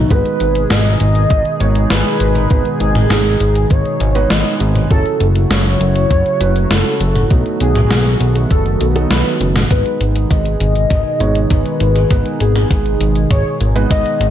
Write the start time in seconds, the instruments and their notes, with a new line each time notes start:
Already playing: analog synth pad D#3, soft synth lead D#4
0.10 analog synth bass G#1, analog synth pad B2 G#3 D#4 G#4, grand piano G#3 B3 D#4 B4, soft synth lead B4, kick, closed hi-hat
0.25 closed hi-hat
0.40 analog synth bass G#1, closed hi-hat
0.55 closed hi-hat
0.70 analog synth bass G#1, soft synth lead D#5, snare, closed hi-hat
0.85 closed hi-hat
1.00 analog synth bass G#1, closed hi-hat
1.15 closed hi-hat
1.30 analog synth bass G#1, kick, closed hi-hat
1.45 closed hi-hat
1.60 analog synth bass G#1, grand piano G#3 B3 D#4 C#5, closed hi-hat
1.75 closed hi-hat
1.90 analog synth bass G#1, soft synth lead B4, snare, closed hi-hat
2.05 closed hi-hat
2.20 analog synth bass G#1, closed hi-hat
2.35 closed hi-hat, mid tom
2.50 analog synth bass G#1, grand piano G#3 B3 D#4 B4, kick, closed hi-hat
2.65 closed hi-hat
2.80 analog synth bass G#1, soft synth lead G#4, closed hi-hat
2.95 closed hi-hat, mid tom
3.10 analog synth bass G#1, snare, closed hi-hat
3.25 closed hi-hat
3.40 analog synth bass G#1, closed hi-hat
3.55 closed hi-hat
3.70 analog synth bass G#1, soft synth lead C#5, kick, closed hi-hat
3.85 closed hi-hat
4.00 analog synth bass G#1, closed hi-hat
4.15 grand piano G#3 B3 D#4 B4, closed hi-hat
4.30 analog synth bass G#1, soft synth lead D#5, snare, closed hi-hat
4.45 closed hi-hat
4.60 analog synth bass G#1, closed hi-hat
4.75 closed hi-hat, mid tom
4.91 analog synth bass F#1, analog synth pad C#3 F#3 A3 E4 F#4, grand piano F#3 C#4 E4 A4, soft synth lead A4, kick, closed hi-hat
5.06 closed hi-hat
5.20 analog synth bass F#1, closed hi-hat
5.36 closed hi-hat
5.50 analog synth bass F#1, soft synth lead C#5, snare, closed hi-hat
5.66 closed hi-hat
5.80 analog synth bass F#1, closed hi-hat
5.96 closed hi-hat
6.11 analog synth bass F#1, kick, closed hi-hat
6.26 closed hi-hat
6.40 analog synth bass F#1, grand piano F#3 C#4 E4 B4, closed hi-hat
6.56 closed hi-hat
6.70 analog synth bass F#1, soft synth lead A4, snare, closed hi-hat
6.86 closed hi-hat
7.00 analog synth bass F#1, closed hi-hat
7.16 closed hi-hat, mid tom
7.30 analog synth bass B1, analog synth pad D#3 F#3 B3, grand piano F#3 A3 B3 D#4, kick, closed hi-hat
7.46 closed hi-hat
7.60 analog synth bass B1, soft synth lead G#4, closed hi-hat
7.75 closed hi-hat, mid tom
7.91 analog synth bass B1, snare, closed hi-hat
8.06 closed hi-hat
8.20 analog synth bass B1, closed hi-hat
8.35 closed hi-hat
8.51 analog synth bass F#1, soft synth lead A4, kick, closed hi-hat
8.66 closed hi-hat
8.81 analog synth bass B1, closed hi-hat
8.96 grand piano F#3 B3 D#4 A4, closed hi-hat
9.11 analog synth bass B1, soft synth lead B4, snare, closed hi-hat
9.26 closed hi-hat
9.41 analog synth bass F#1, closed hi-hat
9.56 snare, closed hi-hat, mid tom
9.70 analog synth bass G#1, analog synth pad B2 D#3 G#3 D#4 G#4, grand piano G#3 B3 D#4 B4, soft synth lead B4, kick, closed hi-hat, mid tom
9.86 closed hi-hat
10.01 analog synth bass G#1, closed hi-hat
10.16 closed hi-hat
10.31 analog synth bass G#1, soft synth lead D#5, kick, closed hi-hat, mid tom
10.45 closed hi-hat
10.60 analog synth bass G#1, closed hi-hat
10.76 closed hi-hat
10.90 analog synth bass G#1, kick, closed hi-hat, mid tom
11.20 analog synth bass G#1, grand piano G#3 B3 D#4 C#5, closed hi-hat
11.35 closed hi-hat
11.50 analog synth bass G#1, soft synth lead B4, kick, closed hi-hat, mid tom
11.65 closed hi-hat
11.80 analog synth bass G#1, closed hi-hat
11.96 closed hi-hat, mid tom
12.11 analog synth bass G#1, grand piano G#3 B3 D#4 B4, kick, closed hi-hat, mid tom
12.26 closed hi-hat
12.40 analog synth bass G#1, soft synth lead G#4, closed hi-hat
12.56 closed hi-hat, mid tom
12.71 analog synth bass G#1, kick, closed hi-hat, mid tom
12.86 closed hi-hat
13.00 analog synth bass G#1, closed hi-hat
13.16 closed hi-hat
13.30 analog synth bass G#1, soft synth lead C#5, kick, closed hi-hat, mid tom
13.61 analog synth bass G#1, closed hi-hat
13.76 grand piano G#3 B3 D#4 B4, closed hi-hat
13.91 analog synth bass G#1, soft synth lead D#5, kick, closed hi-hat, mid tom
14.06 closed hi-hat
14.20 analog synth bass G#1, closed hi-hat